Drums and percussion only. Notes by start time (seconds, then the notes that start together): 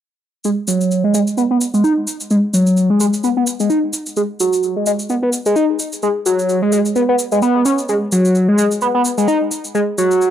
0.44 shaker
0.68 shaker
0.81 shaker
0.91 shaker
1.14 shaker
1.27 shaker
1.38 shaker
1.61 shaker
1.74 shaker
1.84 shaker
2.07 shaker
2.20 shaker
2.30 shaker
2.54 shaker
2.67 shaker
2.77 shaker
3.00 shaker
3.13 shaker
3.24 shaker
3.47 shaker
3.60 shaker
3.70 shaker
3.93 shaker
4.06 shaker
4.16 shaker
4.40 shaker
4.53 shaker
4.63 shaker
4.86 shaker
4.99 shaker
5.09 shaker
5.33 shaker
5.46 shaker
5.56 shaker
5.79 shaker
5.92 shaker
6.02 shaker
6.26 shaker
6.39 shaker
6.49 shaker
6.72 shaker
6.85 shaker
6.96 shaker
7.19 shaker
7.32 shaker
7.42 shaker
7.65 shaker
7.78 shaker
7.89 shaker
8.12 shaker
8.25 shaker
8.35 shaker
8.58 shaker
8.71 shaker
8.81 shaker
9.05 shaker
9.18 shaker
9.28 shaker
9.51 shaker
9.64 shaker
9.75 shaker
9.98 shaker
10.11 shaker
10.21 shaker